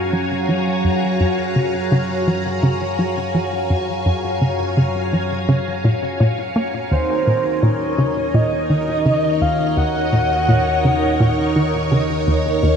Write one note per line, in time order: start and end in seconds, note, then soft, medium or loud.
0.00 6.88 F#2 medium
0.00 9.01 F#4 medium
0.00 6.92 C#5 medium
0.00 6.92 F5 medium
0.00 8.50 G#5 medium
0.00 9.37 A#5 medium
0.13 0.31 F#3 medium
0.49 0.67 F3 medium
0.84 1.02 F#2 medium
1.20 1.38 F#2 medium
1.56 1.74 C#3 medium
1.92 2.02 C#3 medium
2.27 2.38 F3 medium
2.63 2.90 C#3 loud
2.99 3.17 F#3 medium
3.35 3.52 F3 medium
3.70 3.88 F#2 medium
4.06 4.24 F#2 medium
4.42 4.59 C#3 medium
4.77 4.88 C#3 medium
5.13 5.24 F3 medium
5.49 5.75 C#3 loud
5.84 5.95 A#2 medium
6.20 6.38 A#2 loud
6.56 6.67 A#3 medium
6.92 7.09 D#2 medium
6.92 12.77 D#2 medium
6.92 12.77 D#4 medium
6.92 7.64 C5 medium
6.98 12.77 A#4 medium
7.27 7.45 A#2 medium
7.40 12.77 D#5 medium
7.63 7.74 A#2 medium
7.63 8.36 C#5 medium
7.98 8.09 C#3 medium
8.34 8.61 A#2 loud
8.34 9.43 D#5 loud
8.57 12.77 C#5 medium
8.70 8.88 D#3 medium
9.06 9.24 C#3 medium
9.42 9.59 D#2 medium
9.42 9.77 F5 loud
9.77 9.95 D#2 medium
9.77 11.88 F#5 loud
10.13 10.31 A#2 medium
10.49 10.59 A#2 medium
10.85 10.95 C#3 medium
11.20 11.47 A#2 loud
11.56 11.74 D#3 medium
11.92 12.09 C#3 medium
12.27 12.45 D#2 medium
12.63 12.77 D#2 medium